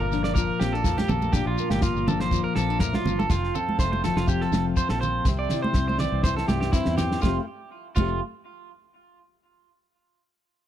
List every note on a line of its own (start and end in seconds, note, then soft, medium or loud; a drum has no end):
0.00 0.50 G1 medium
0.00 1.34 A#2 medium
0.00 0.12 F3 medium
0.00 1.10 A#3 medium
0.00 0.13 D4 medium
0.00 0.37 F4 medium
0.00 0.23 A#4 medium
0.00 3.27 F5 medium
0.00 3.27 A#5 medium
0.00 3.26 D6 medium
0.12 2.07 F3 medium
0.12 0.60 D4 medium
0.12 snare soft
0.12 shekere medium
0.24 0.34 D5 medium
0.24 snare medium
0.35 0.85 F4 medium
0.35 0.59 A#4 medium
0.35 kick medium
0.35 shekere loud
0.60 1.02 A#1 medium
0.60 0.75 C4 medium
0.60 0.73 G4 medium
0.60 snare medium
0.60 shekere medium
0.73 1.35 D4 soft
0.73 0.96 A4 medium
0.84 1.34 F2 medium
0.84 0.99 F4 medium
0.84 kick medium
0.84 snare medium
0.84 shekere loud
0.98 1.09 G4 medium
0.98 1.34 G4 medium
0.98 snare medium
0.98 high conga medium
0.98 shekere soft
1.08 1.30 A#1 medium
1.08 1.32 A#3 medium
1.08 1.32 A4 medium
1.08 high conga medium
1.08 low conga medium
1.08 shekere medium
1.22 high conga medium
1.22 shekere soft
1.32 1.44 A#1 loud
1.32 3.31 A#2 medium
1.32 2.07 D4 medium
1.32 1.46 G4 medium
1.32 kick medium
1.32 snare medium
1.32 shekere loud
1.46 1.56 A#1 loud
1.46 1.70 F4 medium
1.58 3.28 A#3 medium
1.58 shekere medium
1.70 1.91 G1 medium
1.70 1.82 G4 medium
1.70 snare medium
1.70 high conga medium
1.70 shekere soft
1.81 2.06 F4 medium
1.81 2.32 F4 medium
1.81 kick loud
1.81 snare medium
1.81 shekere loud
1.95 2.46 G1 medium
1.95 shekere soft
2.08 3.27 F3 medium
2.08 2.57 D4 medium
2.08 2.20 A4 medium
2.08 high conga medium
2.08 low conga medium
2.08 shekere medium
2.20 2.43 C5 medium
2.20 snare medium
2.31 5.27 F4 medium
2.31 kick medium
2.31 low conga medium
2.31 shekere loud
2.44 2.55 A#4 medium
2.55 2.97 A#1 medium
2.55 2.70 C4 medium
2.55 2.79 A4 medium
2.55 snare medium
2.55 shekere medium
2.70 3.30 D4 soft
2.79 3.06 A2 medium
2.79 2.93 A#4 medium
2.79 kick medium
2.79 snare medium
2.79 shekere loud
2.93 3.18 F4 medium
2.93 snare medium
2.93 high conga medium
3.05 3.26 G1 medium
3.05 3.30 G2 medium
3.05 high conga medium
3.05 low conga medium
3.05 shekere medium
3.19 3.30 A4 medium
3.19 high conga medium
3.19 shekere soft
3.29 3.50 F1 medium
3.29 4.78 F2 medium
3.29 3.53 F4 medium
3.29 5.26 F5 medium
3.29 5.26 G5 medium
3.29 5.26 A5 medium
3.29 kick medium
3.29 snare medium
3.29 low conga medium
3.29 shekere loud
3.44 snare soft
3.55 4.29 C4 medium
3.55 3.78 A4 medium
3.55 low conga medium
3.55 shekere medium
3.69 high conga medium
3.79 4.10 F1 medium
3.79 5.24 A3 medium
3.79 3.91 C5 medium
3.79 kick medium
3.79 snare medium
3.79 shekere medium
3.92 4.03 C5 medium
3.92 high conga medium
4.04 5.24 F3 medium
4.04 4.17 A4 medium
4.04 snare medium
4.04 low conga medium
4.04 shekere medium
4.16 4.46 F1 medium
4.16 4.28 F4 medium
4.16 snare medium
4.28 5.51 C4 medium
4.28 4.41 G4 medium
4.28 kick medium
4.28 shekere loud
4.41 4.65 A4 medium
4.41 snare soft
4.52 4.73 F1 medium
4.52 5.02 C3 medium
4.52 snare medium
4.52 high conga medium
4.52 shekere medium
4.77 4.90 C5 medium
4.77 kick medium
4.77 shekere loud
4.89 5.20 A#1 medium
4.89 5.00 A4 medium
4.89 snare medium
5.01 5.27 A#2 medium
5.01 5.25 C5 medium
5.01 snare soft
5.01 low conga medium
5.01 shekere medium
5.25 5.46 C2 medium
5.25 6.01 C3 medium
5.25 7.22 E5 medium
5.25 7.21 G5 medium
5.25 7.22 C6 medium
5.25 kick medium
5.25 snare soft
5.25 low conga medium
5.25 shekere medium
5.39 5.62 D5 medium
5.49 snare medium
5.49 low conga medium
5.49 shekere medium
5.54 6.25 E4 medium
5.62 5.87 C5 medium
5.62 high conga medium
5.73 6.06 C2 medium
5.73 kick medium
5.73 snare medium
5.73 shekere medium
5.78 6.73 C4 medium
5.88 5.99 C5 medium
5.88 high conga medium
5.98 6.23 D5 medium
5.98 snare medium
5.98 low conga medium
5.98 shekere medium
6.02 7.21 E3 medium
6.12 6.43 C2 medium
6.23 6.98 E4 medium
6.23 6.36 C5 medium
6.23 kick loud
6.23 snare medium
6.23 shekere loud
6.37 6.48 A4 medium
6.37 snare medium
6.48 6.69 C2 medium
6.48 7.21 G2 medium
6.48 6.60 G4 medium
6.48 snare medium
6.48 high conga medium
6.48 shekere medium
6.61 6.72 G4 medium
6.61 snare medium
6.72 7.21 C4 medium
6.72 6.97 E4 medium
6.72 kick loud
6.72 snare medium
6.72 shekere loud
6.85 7.17 E2 medium
6.85 snare medium
6.98 7.21 E4 medium
6.98 7.21 G4 medium
6.98 snare medium
6.98 low conga medium
6.98 shekere medium
7.12 snare medium
7.22 7.38 F1 medium
7.22 7.39 F2 medium
7.22 7.40 A3 medium
7.22 7.40 C4 medium
7.22 7.37 F4 medium
7.22 7.45 A4 medium
7.22 7.46 F5 medium
7.22 7.46 G5 medium
7.22 muted nylon-string guitar stroke medium
7.22 kick medium
7.22 snare medium
7.22 high conga medium
7.22 shekere medium
7.26 7.40 G4 medium
7.96 8.20 F1 medium
7.96 8.19 F2 medium
7.96 8.20 A3 medium
7.96 8.19 F4 medium
7.96 muted nylon-string guitar stroke medium
7.96 kick medium
7.96 crash medium
7.96 high conga medium
7.96 shekere medium
8.00 8.21 C4 medium
8.00 8.21 G4 medium